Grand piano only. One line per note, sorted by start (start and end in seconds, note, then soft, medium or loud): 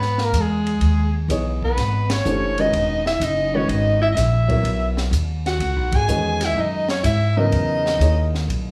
1.29 2.04 E3 medium
1.29 2.04 B3 medium
1.29 2.04 D#4 medium
1.29 2.04 G#4 medium
1.29 2.04 C#5 medium
2.25 2.55 E3 medium
2.25 2.55 A3 medium
2.25 2.55 D4 medium
2.25 2.55 G4 soft
2.25 2.56 C5 medium
2.59 3.00 D#3 medium
2.59 3.00 G#3 medium
2.59 3.00 C#4 medium
2.59 3.00 F#4 medium
2.59 3.00 B4 medium
3.54 4.14 D#3 medium
3.54 4.14 G#3 medium
3.54 4.14 C#4 medium
3.54 4.15 F#4 medium
3.54 4.14 B4 medium
4.48 5.09 F#3 medium
4.48 5.09 B3 medium
4.48 5.09 E4 medium
4.48 5.10 A#4 medium
4.48 5.10 E5 medium
6.08 6.82 D#3 medium
6.08 6.83 G#3 medium
6.08 6.83 C#4 medium
6.08 6.83 F#4 medium
6.08 6.83 B4 medium
7.37 7.97 C#3 medium
7.37 7.98 E3 medium
7.37 7.97 F#3 medium
7.37 7.97 B3 medium
7.37 7.98 A#4 medium
8.00 8.71 A#3 medium
8.00 8.71 D#4 soft
8.00 8.71 E4 medium
8.00 8.71 G#4 medium
8.00 8.71 C#5 medium